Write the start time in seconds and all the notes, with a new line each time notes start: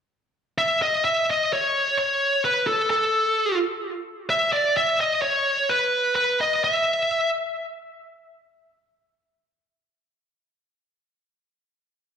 0.58 E5
0.82 D#5
1.05 E5
1.31 D#5
1.53 C#5
1.98 C#5
2.45 B4
2.67 A4
2.90 A4
4.30 E5
4.53 D5
4.77 E5
5.00 D#5
5.22 C#5
5.69 B4
6.16 B4
6.41 D#5
6.64 E5